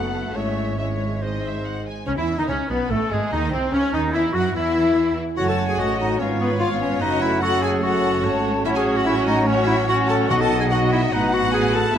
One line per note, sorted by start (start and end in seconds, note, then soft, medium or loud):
0.00 0.31 F#1 medium
0.00 0.31 F#2 medium
0.00 0.33 A3 soft
0.00 0.34 A3 soft
0.00 0.27 B3 medium
0.00 0.33 F#4 soft
0.00 0.34 A4 soft
0.00 0.37 B4 soft
0.00 0.11 F#5 soft
0.00 0.35 F#5 soft
0.26 0.34 A3 soft
0.34 1.84 G#1 soft
0.34 1.84 G#2 soft
0.34 0.76 G#3 soft
0.34 0.80 A3 medium
0.34 0.77 C#4 soft
0.34 0.77 E4 soft
0.34 0.77 C#5 soft
0.34 0.78 C#5 soft
0.34 0.77 E5 soft
0.34 0.76 E5 soft
0.77 1.20 G#3 soft
0.77 1.64 G#3 soft
0.77 1.20 C#4 soft
0.77 1.20 E4 soft
0.77 1.20 C#5 soft
0.77 1.23 C#5 soft
0.77 0.85 E5 soft
0.77 1.20 E5 soft
0.99 1.07 C#5 soft
1.21 1.86 G#3 soft
1.21 1.85 C4 soft
1.21 1.85 D#4 soft
1.21 1.87 C5 soft
1.21 1.86 C5 soft
1.21 1.86 D#5 soft
1.21 1.43 D#5 soft
1.43 1.64 E5 soft
1.65 1.86 F#5 soft
1.87 2.07 G#5 soft
2.07 2.17 C#2 medium
2.07 2.17 C#3 medium
2.07 2.17 C#4 medium
2.07 2.11 C#4 medium
2.07 2.17 C#4 medium
2.07 2.12 C#4 medium
2.07 2.11 C#5 medium
2.17 2.38 E2 medium
2.17 2.39 E3 medium
2.17 2.27 E4 medium
2.17 2.38 E4 medium
2.17 2.25 E4 medium
2.17 2.38 E4 medium
2.17 2.27 E4 medium
2.17 2.41 E4 medium
2.17 2.38 E5 medium
2.38 2.43 D#3 medium
2.38 2.49 D#4 medium
2.38 2.43 D#4 medium
2.38 2.49 D#4 medium
2.38 2.43 D#4 soft
2.38 2.48 D#4 medium
2.38 2.43 D#5 medium
2.48 2.57 C#2 medium
2.48 2.57 C#3 medium
2.48 2.58 C#4 medium
2.48 2.69 C#4 medium
2.48 2.70 C#4 medium
2.48 2.69 C#4 medium
2.48 2.70 C#4 medium
2.48 2.56 C#5 medium
2.68 2.78 B1 medium
2.68 2.78 B2 medium
2.68 2.90 B3 medium
2.68 2.92 B3 medium
2.68 2.90 B3 medium
2.68 2.91 B3 medium
2.68 2.89 B4 soft
2.68 2.90 B4 medium
2.89 2.99 A1 medium
2.89 2.99 A2 medium
2.89 3.11 A3 medium
2.89 3.13 A3 medium
2.89 3.11 A3 medium
2.89 3.10 A4 medium
2.89 3.11 A4 medium
2.89 3.14 A4 medium
3.09 3.19 G#1 medium
3.09 3.19 G#2 medium
3.09 3.32 G#3 medium
3.09 3.21 G#3 medium
3.09 3.32 G#3 medium
3.09 3.20 G#3 soft
3.09 3.31 G#4 medium
3.09 3.32 G#4 medium
3.31 3.52 D#2 medium
3.31 3.52 D#3 medium
3.31 3.52 D#4 medium
3.31 3.41 D#4 medium
3.31 3.51 D#4 medium
3.31 3.42 D#4 medium
3.31 3.52 D#5 medium
3.51 3.73 C2 medium
3.51 3.73 C3 medium
3.51 3.72 C4 medium
3.51 3.75 C4 medium
3.51 3.60 C5 medium
3.71 3.80 C#2 medium
3.71 3.80 C#3 medium
3.71 3.92 C#4 medium
3.71 3.93 C#4 medium
3.71 3.95 C#4 medium
3.71 3.93 C#4 medium
3.71 3.82 C#4 medium
3.71 3.96 C#4 medium
3.71 3.93 C#5 medium
3.92 4.13 D#2 medium
3.92 4.13 D#3 medium
3.92 4.14 D#4 medium
3.92 4.12 D#4 medium
3.92 4.14 D#4 medium
3.92 4.02 D#4 medium
3.92 4.16 D#4 medium
3.92 4.01 D#5 medium
4.12 4.34 E2 medium
4.12 4.34 E3 medium
4.12 4.22 E4 medium
4.12 4.34 E4 medium
4.12 4.23 E4 medium
4.12 4.36 E4 medium
4.12 4.22 E5 medium
4.32 4.54 F#2 medium
4.32 4.55 F#3 medium
4.32 4.42 F#4 medium
4.32 4.41 F#4 medium
4.32 4.55 F#4 medium
4.32 4.44 F#4 medium
4.32 4.55 F#5 medium
4.54 5.15 E2 medium
4.54 5.16 E3 medium
4.54 5.15 E4 medium
4.54 5.16 E4 medium
4.54 5.16 E5 medium
5.37 5.76 F#1 medium
5.37 5.76 F#2 medium
5.37 5.76 A3 medium
5.37 6.16 C#4 medium
5.37 5.47 F#4 medium
5.37 5.76 F#4 medium
5.37 6.16 F#4 medium
5.37 5.76 C#5 medium
5.37 5.80 C#5 medium
5.37 6.16 F#5 medium
5.37 5.47 F#5 medium
5.48 5.58 A4 medium
5.48 5.68 A5 medium
5.68 5.81 G#4 medium
5.68 5.78 G#5 medium
5.78 6.20 A1 medium
5.78 6.20 A2 medium
5.78 6.19 A3 medium
5.78 6.19 F#4 medium
5.78 6.00 F#4 medium
5.78 6.19 C#5 medium
5.78 6.19 D#5 medium
5.78 5.99 F#5 medium
5.99 6.21 D#4 medium
5.99 6.19 D#5 medium
6.19 7.02 G#1 medium
6.19 7.02 G#2 medium
6.19 6.59 B3 medium
6.19 7.02 B3 medium
6.19 6.40 C#4 medium
6.19 6.58 F4 medium
6.19 7.02 F4 medium
6.19 6.27 C#5 medium
6.19 6.60 C#5 medium
6.19 7.03 C#5 medium
6.19 6.59 F5 medium
6.40 6.50 B3 medium
6.40 6.60 B4 medium
6.60 7.01 B3 medium
6.60 7.01 F4 medium
6.60 6.70 F4 medium
6.60 7.00 C#5 medium
6.60 6.81 F5 medium
6.60 7.01 F5 medium
6.81 7.01 C#4 medium
6.81 7.01 C#5 medium
7.00 8.22 F#1 medium
7.00 8.22 F#2 medium
7.00 7.41 A3 medium
7.00 8.62 A3 medium
7.00 10.26 C#4 medium
7.00 7.21 D#4 medium
7.00 7.41 F#4 medium
7.00 7.43 B4 medium
7.00 7.41 C#5 medium
7.00 7.22 D#5 medium
7.00 7.82 F#5 medium
7.21 7.42 E4 medium
7.21 7.42 E5 medium
7.41 7.81 A3 medium
7.41 7.81 F#4 medium
7.41 7.64 F#4 medium
7.41 8.25 A4 medium
7.41 7.82 C#5 medium
7.41 7.62 F#5 medium
7.62 7.83 G#4 medium
7.62 7.70 G#5 medium
7.82 8.63 A3 medium
7.82 8.63 F#4 medium
7.82 8.44 F#4 medium
7.82 8.64 C#5 medium
7.82 7.89 F#5 medium
7.82 8.44 F#5 medium
8.03 8.09 A5 medium
8.24 8.65 G#1 medium
8.24 8.66 G#2 medium
8.24 8.65 C#5 medium
8.24 8.64 A5 medium
8.65 10.30 A1 medium
8.65 10.30 A2 medium
8.65 11.79 F#3 medium
8.65 9.05 C#4 medium
8.65 8.75 E4 medium
8.65 9.05 F#4 medium
8.65 9.04 C#5 medium
8.65 10.26 C#5 medium
8.65 8.69 E5 medium
8.65 11.71 F#5 medium
8.75 8.98 G#4 medium
8.75 8.83 G#5 medium
8.96 9.06 F#4 medium
8.96 9.06 F#5 medium
9.05 9.46 C#4 medium
9.05 9.16 E4 medium
9.05 9.46 F#4 medium
9.05 9.46 C#5 medium
9.05 9.26 E5 medium
9.26 9.49 D#4 medium
9.26 9.47 D#5 medium
9.46 9.87 C#4 medium
9.46 9.66 C#4 medium
9.46 9.87 F#4 medium
9.46 9.67 C#5 medium
9.46 9.86 C#5 medium
9.66 9.77 E4 medium
9.66 9.88 E5 medium
9.88 10.29 C#4 medium
9.88 10.29 F#4 medium
9.88 10.09 F#4 medium
9.88 10.29 C#5 medium
9.88 9.96 F#5 medium
10.08 10.30 A4 medium
10.08 10.16 A5 medium
10.29 11.13 B1 medium
10.29 11.13 B2 medium
10.29 10.88 B2 medium
10.29 10.70 B3 medium
10.29 11.12 D#4 medium
10.29 10.43 F#4 loud
10.29 10.70 F#4 medium
10.29 10.70 D#5 medium
10.29 11.14 D#5 medium
10.29 10.34 F#5 medium
10.40 10.63 A4 medium
10.40 10.60 A5 medium
10.59 10.73 G#4 medium
10.59 10.64 G#5 medium
10.70 11.12 B3 medium
10.70 11.11 F#4 medium
10.70 10.92 F#4 medium
10.70 11.12 D#5 medium
10.70 10.78 F#5 medium
10.91 11.02 E4 medium
10.91 11.12 E5 medium
11.12 11.94 A1 medium
11.12 11.94 A2 medium
11.12 11.98 B3 medium
11.12 11.94 B3 medium
11.12 11.35 D#4 medium
11.12 11.94 F#4 medium
11.12 11.95 B4 medium
11.12 11.33 D#5 medium
11.12 11.96 F#5 medium
11.33 11.53 F#4 medium
11.33 11.53 F#5 medium
11.54 11.74 G#4 medium
11.54 11.75 G#5 medium
11.74 11.95 A4 medium
11.74 11.96 A5 medium
11.94 11.98 E5 medium